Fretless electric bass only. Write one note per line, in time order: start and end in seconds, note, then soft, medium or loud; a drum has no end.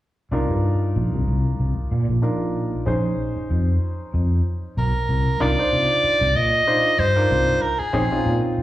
0.31 0.46 C2 medium
0.49 0.97 G2 medium
0.96 1.10 A#1 medium
1.13 1.25 C2 medium
1.27 1.53 C2 medium
1.59 1.74 C2 medium
1.77 muted fretless electric bass stroke soft
1.91 2.06 A#2 medium
2.09 2.72 A#1 medium
2.86 3.12 A#1 medium
3.36 muted fretless electric bass stroke soft
3.50 3.76 F2 medium
4.14 4.39 F2 medium
4.77 4.91 B1 medium
5.09 5.34 C2 medium
5.41 5.55 C2 medium
5.72 5.86 C3 medium
6.04 muted fretless electric bass stroke soft
6.21 6.33 C2 medium
6.35 6.61 A#2 medium
6.98 7.24 G2 medium
7.30 7.56 C2 medium
7.80 muted fretless electric bass stroke soft
7.93 8.08 A#1 medium
8.25 8.40 A#2 medium
8.58 muted fretless electric bass stroke soft